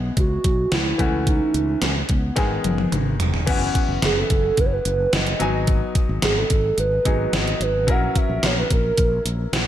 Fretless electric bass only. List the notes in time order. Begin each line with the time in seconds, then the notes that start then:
0.17 C#2
0.44 B1
0.72 C#2
0.99 C#2
1.54 C#2
1.82 C#2
2.10 C#2
2.37 G#1
2.65 F#1
2.92 G#1
3.20 E1
3.47 F#1
3.88 F#1
4.02 F#1
4.30 F#1
4.58 F#1
4.85 F#1
5.13 F#1
5.41 G#1
6.09 G#1
6.23 G#1
6.50 G#1
6.78 G#1
7.06 G#1
7.33 G#1
7.60 G#1
7.88 A#1
8.29 A#1
8.43 A#1
8.71 A#1
8.98 A#1
9.25 A#1
9.53 A#1